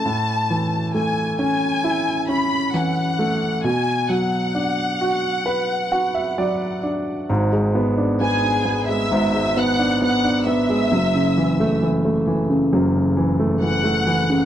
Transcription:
Already playing: violin section A5
0.05 grand piano A2
0.50 grand piano E3
0.94 grand piano A3, violin section G#5
1.39 grand piano C#4, violin section G#5
1.84 grand piano E4
2.29 grand piano C#4, violin section B5
2.74 grand piano E3, violin section F#5
3.19 grand piano A3
3.64 grand piano B2, violin section G#5
4.09 grand piano F#3, violin section F#5
4.55 grand piano D4
5.01 grand piano F#4
5.46 grand piano B4
5.92 grand piano F#4 F#5
6.14 grand piano E5
6.38 grand piano F#3 D5
6.83 grand piano D4
7.29 grand piano G#1 G#2
7.52 grand piano G#3
7.75 grand piano B3
7.98 grand piano D4
8.21 grand piano B3, violin section G#4 G#5
8.43 grand piano D4
8.65 grand piano B3
8.89 grand piano G#3, violin section E5 E6
9.11 grand piano G#1 G#2
9.34 grand piano G#3
9.57 grand piano B3, violin section F#5 F#6
9.79 grand piano D4
10.02 grand piano B3, violin section F#5 F#6
10.24 grand piano D4
10.47 grand piano B3, violin section E5 E6
10.70 grand piano G#3
10.92 grand piano F#1 F#2
11.15 grand piano C#3
11.38 grand piano E3
11.60 grand piano A3
11.82 grand piano E3
12.05 grand piano A3
12.27 grand piano E3
12.50 grand piano C#3
12.73 grand piano F#1 F#2
12.95 grand piano C#3
13.17 grand piano E3
13.40 grand piano A3
13.62 grand piano E3, violin section F#5 F#6
13.84 grand piano A3
14.07 grand piano E3
14.30 grand piano C#3

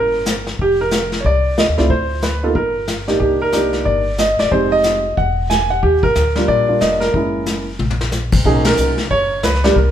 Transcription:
Already playing: upright bass G1, grand piano G3 A#3 C#4 E4 A#4
0.26 snare, hi-hat pedal
0.47 snare
0.59 upright bass F1, grand piano G4, brush sweep, kick
0.81 grand piano A#4
0.91 snare, hi-hat pedal
1.12 snare
1.20 grand piano C#5
1.25 upright bass C2, grand piano D5, brush sweep, kick
1.57 grand piano D#5, snare, hi-hat pedal
1.69 upright bass D#2
1.78 upright bass C#2, grand piano A3 C4 E4 F4 D5, snare
1.90 upright bass D2, grand piano C5, brush sweep, kick
2.22 grand piano B4, snare, hi-hat pedal
2.43 grand piano A#3 B3 D#4 F4 A4
2.55 upright bass G1, grand piano A#4, brush sweep, kick
2.87 snare, hi-hat pedal
3.08 grand piano A#3 D4 D#4 G4, snare
3.20 upright bass C2, grand piano G4, brush sweep, kick
3.42 grand piano A#4
3.52 grand piano A#3 D4 D#4 G4, snare, hi-hat pedal
3.73 snare
3.85 upright bass G1, grand piano D5, brush sweep, kick
4.18 grand piano D#5, snare, hi-hat pedal
4.39 upright bass E1, grand piano D5, snare
4.51 upright bass F1, grand piano G#3 C4 D#4 G4 C5, brush sweep, kick
4.72 grand piano D#5
4.84 snare, hi-hat pedal
5.17 upright bass E1, grand piano F#5, brush sweep, kick
5.50 grand piano G#5, snare, hi-hat pedal
5.70 grand piano F#5
5.83 upright bass D#2, grand piano G4, brush sweep, kick
6.03 grand piano A#4, kick
6.15 upright bass D2, snare, hi-hat pedal
6.36 grand piano G3 A#3 D4 F4, snare
6.48 upright bass A#1, grand piano D5, brush sweep, kick
6.68 grand piano G3 A#3 D4 F4
6.81 upright bass F1, grand piano D#5, snare, hi-hat pedal
7.00 grand piano A#4, snare
7.14 upright bass F#1, grand piano G#3 A#3 C#4 E4, brush sweep, kick
7.46 snare, hi-hat pedal
7.79 upright bass A#1, mid tom
7.90 floor tom
8.01 snare
8.12 snare, hi-hat pedal
8.32 upright bass F#2, kick, crash
8.45 upright bass B1, grand piano F#3 A#3 C#4 D#4 G#4, brush sweep, kick
8.64 grand piano A#4, snare, ride
8.77 upright bass C2, hi-hat pedal
8.98 snare
9.10 upright bass F#1, grand piano C#5, brush sweep, kick
9.43 upright bass C#2, grand piano B4, snare, hi-hat pedal
9.55 snare
9.64 grand piano G3 A#3 D4 G4, snare
9.75 upright bass C2, grand piano A#4, brush sweep, kick

